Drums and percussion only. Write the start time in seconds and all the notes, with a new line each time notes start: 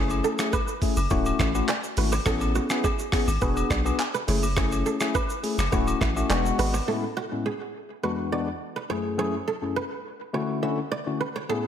0.10 high agogo, shaker
0.24 shaker
0.39 finger snap, cross-stick, shaker
0.53 kick, high agogo, shaker
0.68 shaker
0.82 kick, open hi-hat, shaker
0.96 high agogo, shaker
1.10 kick, shaker
1.25 high agogo, shaker
1.39 finger snap, kick, cross-stick, shaker
1.55 high agogo, shaker
1.68 clap, low woodblock, shaker
1.83 shaker
1.97 open hi-hat, shaker
2.12 high agogo, shaker
2.26 finger snap, kick, cross-stick, shaker
2.41 high agogo, shaker
2.55 shaker
2.70 finger snap, cross-stick, shaker
2.84 kick, high agogo, shaker
2.99 shaker
3.12 finger snap, kick, cross-stick, open hi-hat, shaker
3.28 high agogo, shaker
3.41 kick, shaker
3.56 high agogo, shaker
3.70 finger snap, kick, cross-stick, shaker
3.86 high agogo, shaker
3.99 clap, low woodblock, shaker
4.15 shaker
4.28 open hi-hat, shaker
4.43 high agogo, shaker
4.57 finger snap, kick, cross-stick, shaker
4.72 high agogo, shaker
4.86 shaker
5.00 finger snap, cross-stick, shaker
5.15 kick, high agogo, shaker
5.29 shaker
5.44 open hi-hat, shaker
5.59 finger snap, cross-stick, high agogo, shaker
5.72 kick, shaker
5.87 high agogo, shaker
6.01 finger snap, kick, cross-stick, shaker
6.17 high agogo, shaker
6.30 clap, low woodblock, shaker
6.45 shaker
6.59 open hi-hat, shaker
6.74 high agogo, shaker